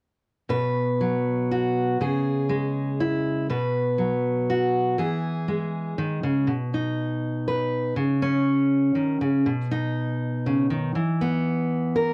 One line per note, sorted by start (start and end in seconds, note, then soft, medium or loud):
0.49 1.96 B2 soft
0.49 1.96 B4 medium
1.01 2.00 F#3 soft
1.51 1.97 F#4 soft
2.01 3.49 C#3 soft
2.01 3.50 G#4 soft
2.49 3.46 G#3 soft
3.00 3.46 E4 soft
3.50 4.95 B2 soft
3.50 4.99 B4 soft
3.98 4.98 F#3 soft
4.50 4.96 F#4 soft
4.98 5.97 E3 soft
4.98 6.47 G#4 soft
5.48 6.44 G#3 soft
5.98 6.22 D#3 medium
6.23 6.47 C#3 medium
6.47 7.93 B2 soft
6.74 7.94 D#4 soft
7.48 7.94 B4 soft
7.96 8.95 C#3 medium
8.22 9.43 C#4 soft
8.95 9.20 D#3 soft
9.21 9.46 C#3 soft
9.46 10.92 B2 medium
9.71 10.92 D#4 soft
10.46 10.70 C#3 soft
10.70 10.95 D#3 medium
10.95 12.14 E3 medium
11.21 12.14 B3 soft
11.96 12.14 A#4 soft